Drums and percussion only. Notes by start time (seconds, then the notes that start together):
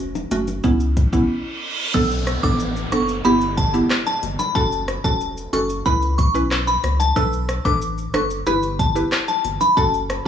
0.15 high bongo, shaker
0.31 closed hi-hat, high bongo, low bongo, shaker
0.48 high bongo, shaker
0.64 kick, high bongo, shaker
0.80 shaker
0.97 kick, closed hi-hat, shaker
1.13 kick, shaker
1.94 kick, crash, high bongo, shaker
2.11 shaker
2.27 cross-stick, closed hi-hat, shaker
2.43 kick, shaker
2.60 shaker
2.76 shaker
2.92 cross-stick, closed hi-hat, high bongo, shaker
3.08 shaker
3.25 high bongo, shaker
3.41 shaker
3.58 kick, closed hi-hat, shaker
3.74 shaker
3.90 cross-stick, clap, shaker
4.06 high bongo, shaker
4.23 closed hi-hat, low bongo, shaker
4.39 high bongo, shaker
4.56 kick, high bongo, shaker
4.72 shaker
4.88 cross-stick, closed hi-hat, shaker
5.04 kick, shaker
5.21 shaker
5.37 shaker
5.53 closed hi-hat, high bongo, shaker
5.70 shaker
5.86 kick, high bongo, shaker
6.02 shaker
6.19 kick, closed hi-hat, shaker
6.35 shaker
6.51 cross-stick, clap, shaker
6.67 high bongo, shaker
6.84 cross-stick, closed hi-hat, low bongo, shaker
7.00 high bongo, shaker
7.16 kick, high bongo, shaker
7.33 shaker
7.49 cross-stick, closed hi-hat, shaker
7.65 kick, shaker
7.82 shaker
7.98 shaker
8.14 cross-stick, closed hi-hat, high bongo, shaker
8.30 shaker
8.47 high bongo, shaker
8.63 shaker
8.79 kick, closed hi-hat, shaker
8.96 shaker
9.12 cross-stick, clap, shaker
9.28 high bongo, shaker
9.45 closed hi-hat, low bongo, shaker
9.61 high bongo, shaker
9.77 kick, high bongo, shaker
9.94 shaker
10.10 cross-stick, closed hi-hat, shaker